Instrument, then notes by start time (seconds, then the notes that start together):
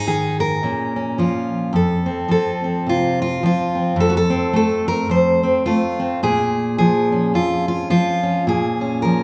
steel-string acoustic guitar
Already playing: G#2 D#4
0.07 D#3 G#4
0.40 A#4
0.63 A#2 C#4
0.96 C#4
1.18 F3 F4
1.73 F2 A4
2.06 C4
2.28 F3 A4
2.64 C4
2.86 C3 F4
3.22 F4
3.43 F3 F4
3.75 C4
3.96 F2
4.00 A4
4.09 F#4
4.17 A4
4.30 C4
4.53 A3 A4
4.88 A#4
5.09 F2 C5
5.43 C4
5.66 A3 F4
5.99 C4
6.23 A#2 G#4
6.78 F3 G#4
7.12 C#4
7.34 F2 F4
7.68 F4
7.90 F3 F4
8.23 C#4
8.47 A#2 G#4
8.81 C#4
9.02 F3 A#4